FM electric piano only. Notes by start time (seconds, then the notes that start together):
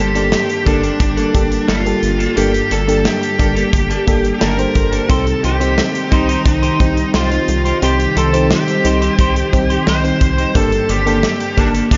Already playing: G2 A#3 D4 G4 A4
0.15 A#3 D4 G4 A4
0.66 A#3 D4 G4 A4
1.34 A#3 D4 G4 A4
1.85 A#3 D4 G4 A4
2.37 G2 A#3 D4 G4 A4
2.88 A#3 D4 G4 A4
3.39 A#3 D4 G4 A4
4.07 A#3 D4 G4 A4
4.58 A#3 D4 G4 C5
5.09 C3 C4 D#4 G4 C5
5.60 C4 D#4 G4 C5
6.12 C4 D#4 G4 C5
6.80 C4 D#4 G4 C5
7.31 C4 D#4 G4 C5
7.82 C3 C4 D#4 G4 C5
8.33 C4 D#4 G4 C5
8.84 C4 D#4 G4 C5
9.53 C4 D#4 G4 C5
10.04 C4 D#4 G4 C5
10.55 G2 A#3 D4 G4 A4
11.06 A#3 D4 G4 A4
11.57 A#3 D4 G4 A4